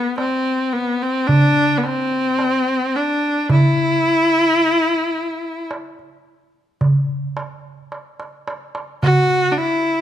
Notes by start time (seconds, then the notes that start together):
Already playing: B3
0.18 C4, darbuka tek
0.73 B3, darbuka ka
1.02 C4
1.27 D4, darbuka dum
1.78 B3
1.84 C4, darbuka tek
2.12 darbuka ka
2.39 darbuka tek
2.96 D4
3.50 E4, darbuka dum
4.61 darbuka ka
5.71 darbuka tek
5.99 darbuka ka
6.81 darbuka dum
7.37 darbuka tek
7.92 darbuka tek
8.20 darbuka ka
8.48 darbuka tek
8.75 darbuka ka
9.03 F#4, darbuka dum
9.52 D4
9.58 E4